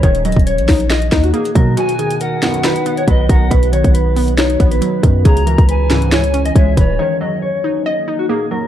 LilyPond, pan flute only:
\new Staff \with { instrumentName = "Pan flute" } { \time 4/4 \key b \major \tempo 4 = 138 r1 | gis''4 fis''2 dis''8 fis''8 | r1 | ais''4 gis''2 e''8 cis''8 |
r1 | }